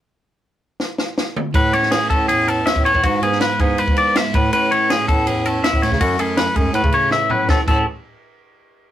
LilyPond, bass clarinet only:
\new Staff \with { instrumentName = "Bass clarinet" } { \clef bass \time 4/4 \key a \major \tempo 4 = 161 r1 | a,4. a,4.~ a,16 a,8 a,16 | gis,8 gis,4 gis,8. gis,4~ gis,16 a,8 | a,4. a,4.~ a,16 a,8 cis16 |
fis,8 fis,4 fis,8 a,16 cis4~ cis16 a,8 | a,16 r16 a,8 r2. | }